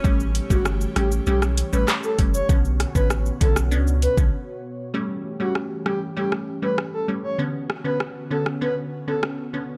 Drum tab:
HH |--x---x---x---x-|--x---x---x-----|----------------|----------------|
SH |xxxxxxxxxxxxxxxx|xxxxxxxxxxxx----|----------------|----------------|
CP |------------x---|----------------|----------------|----------------|
SD |----r-r--r--r---|--r-r--r--------|----r-r--r--r---|--r-r--r----r---|
BD |o--o----------o-|o--o--o----o----|----------------|----------------|